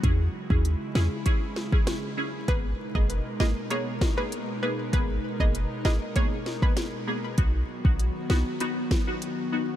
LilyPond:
<<
  \new Staff \with { instrumentName = "Synth pluck" } { \time 4/4 \key gis \minor \tempo 4 = 98 r1 | b'16 r8 dis''16 r8 dis''16 r16 cis''16 r8 b'16 r8 b'16 r16 | b'16 r8 dis''16 r8 dis''16 r16 cis''16 r8 b'16 r4 | r1 | }
  \new Staff \with { instrumentName = "Synth stab" } { \time 4/4 \key gis \minor <cis' e' gis'>16 r8 <cis' e' gis'>16 r8 <cis' e' gis'>16 r16 <cis' e' gis'>16 r8 <cis' e' gis'>8. <cis' e' gis'>8 | <ais b gis'>16 r8 <ais b gis'>16 r8 <ais b gis'>16 r16 <ais b gis'>16 r8 <ais b gis'>8. <ais b gis'>8 | <ais b gis'>16 r8 <ais b gis'>16 r8 <ais b gis'>16 r16 <ais b gis'>16 r8 <ais b gis'>8. <ais b gis'>8 | <b dis' fis'>16 r8 <b dis' fis'>16 r8 <b dis' fis'>16 r16 <b dis' fis'>16 r8 <b dis' fis'>8. <b dis' fis'>8 | }
  \new Staff \with { instrumentName = "Analog synth pad" } { \clef bass \time 4/4 \key gis \minor <cis gis e'>1 | <b, gis dis' ais'>1~ | <b, gis dis' ais'>1 | <dis fis b fis'>1 | }
  \new Staff \with { instrumentName = "808-style bass" } { \clef bass \time 4/4 \key gis \minor e,8 r16 dis,8 r16 e,16 r2 r16 | gis,,8 r16 fis,,8 r16 gis,,16 r2 r16 | gis,,8 r16 fis,,8 r16 gis,,16 r2 r16 | b,,8 r16 ais,,8 r16 b,,16 r2 r16 | }
  \new DrumStaff \with { instrumentName = "Drums" } \drummode { \time 4/4 <hh bd>8. bd16 hh8 sn8 <hh bd>8 sn16 bd16 <hh ss sn>4 | <hh bd>8. bd16 hh8 sn8 hh8 <bd sn>8 hh4 | <hh bd>8. bd16 hh8 sn8 <hh bd>8 sn16 bd16 <hh sn>4 | <hh bd>8. bd16 hh8 sn8 hh8 <bd sn>8 hh4 | }
>>